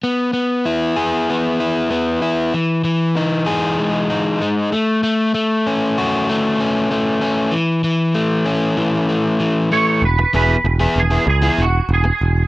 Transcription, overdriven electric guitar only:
\new Staff \with { instrumentName = "Overdriven electric guitar" } { \time 4/4 \key e \major \tempo 4 = 96 b8 b8 e'8 gis'8 b8 e'8 b8 e'8 | e8 e8 dis'8 gis'8 gis8 dis'8 gis8 a8 | a8 a8 cis'8 fis'8 a8 cis'8 a8 cis'8 | e8 e8 a8 cis'8 e8 a8 e8 a8 |
r8 <e b e' gis'>16 r8 <e b e' gis'>16 r16 <e b e' gis'>16 r16 <e b e' gis'>16 r4. | }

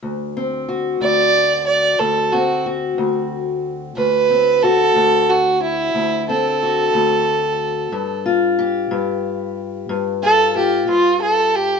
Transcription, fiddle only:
\new Staff \with { instrumentName = "Fiddle" } { \time 12/8 \key d \mixolydian \tempo 4. = 61 r4. d''4 d''8 a'8 fis'8 r2 | b'4 a'4 fis'8 e'4 a'2~ a'8~ | a'8 r2. a'8 g'8 f'8 a'8 g'8 | }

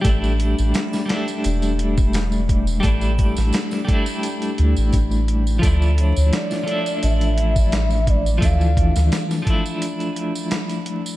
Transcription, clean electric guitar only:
\new Staff \with { instrumentName = "Clean electric guitar" } { \time 4/4 \key d \minor \tempo 4 = 86 <g a d' e'>4. <g a d' e'>2~ <g a d' e'>8 | <g a d' e'>4. <g a d' e'>2~ <g a d' e'>8 | <f a d' e'>4. <f a d' e'>2~ <f a d' e'>8 | <e f a d'>4. <f a d' e'>2~ <f a d' e'>8 | }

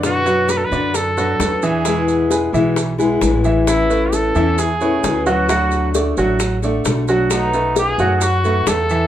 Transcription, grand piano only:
\new Staff \with { instrumentName = "Grand piano" } { \time 4/4 \key b \dorian \tempo 4 = 132 <d d''>8 <fis fis' b'>4 <d d' d''>4 <fis fis' b'>4 <e e' e''>8 | <e e' e''>4 <gis gis' b'>8 <e e' e''>4 <gis gis' b'>4 <e e' e''>8~ | <e e' e''>8 <a a' b'>4 <e e' e''>4 <a b' cis''>4 <fis fis' fis''>8 | <fis fis' fis''>4 <a a' d''>8 <fis fis' fis''>4 <a a' d''>4 <fis fis' fis''>8~ |
<fis fis' fis''>8 <a a' b'>4 <fis fis' fis''>4 <a a' b'>4 <e e' e''>8 | }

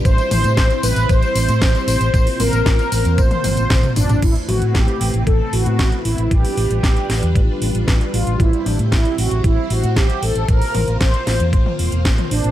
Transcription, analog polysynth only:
\new Staff \with { instrumentName = "Analog polysynth" } { \time 4/4 \key c \lydian \tempo 4 = 115 c''4. b'8 c''4. c''8~ | c''8 bes'4. c''4. d'8 | e'8 fis'8 g'4 a'8 fis'4 e'8 | g'2. r8 f'8 |
e'8 d'8 e'8 fis'8 e'8 fis'8 g'8 a'8 | bes'4 c''2 r8 d'8 | }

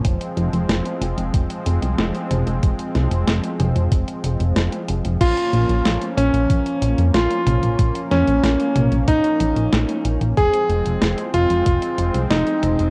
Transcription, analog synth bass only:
\new Staff \with { instrumentName = "Analog synth bass" } { \clef bass \time 4/4 \key bes \minor \tempo 4 = 93 f,,16 r16 f,,16 f,,16 f,,16 r16 f,,16 f,,16 f,,16 r16 f,,16 c,16 f,,16 r16 f,,16 f,,16 | f,,16 r16 c,16 f,,16 f,,16 r16 f,,16 f,,16 f,,16 r16 f,,16 f,,16 f,,16 r16 f,,16 f,,16 | bes,,16 r16 bes,,16 bes,,16 bes,,16 r16 bes,,16 bes,,16 bes,,16 r16 bes,,16 f,16 bes,,16 r16 bes,,16 bes,,16 | bes,,16 r16 f,16 bes,,16 bes,,16 r16 bes,,16 bes,,16 bes,,16 r16 bes,,16 bes,,16 bes,,16 r16 bes,,16 bes,,16 |
f,,16 r16 f,,16 f,,16 f,,16 r16 f,,16 f,,16 f,,16 r16 f,,16 c,16 f,,16 r16 f,,16 f,,16 | }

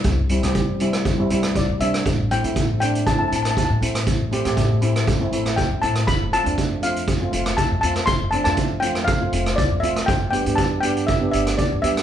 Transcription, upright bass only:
\new Staff \with { instrumentName = "Upright bass" } { \clef bass \time 4/4 \key a \minor \tempo 4 = 120 c,8. c4.~ c16 c,8 g,16 c16 c8 | a,,8. a,4.~ a,16 a,,8 e,16 a,16 a,8 | a,,8. a,4.~ a,16 a,,8 e,16 a,16 a,8 | f,,8. f,4.~ f,16 f,,8 c,16 f,16 f,8 |
f,,8. f,4.~ f,16 f,,8 c,16 f,16 f,,8 | g,,8. g,4.~ g,16 g,,8 d,16 g,16 g,8 | }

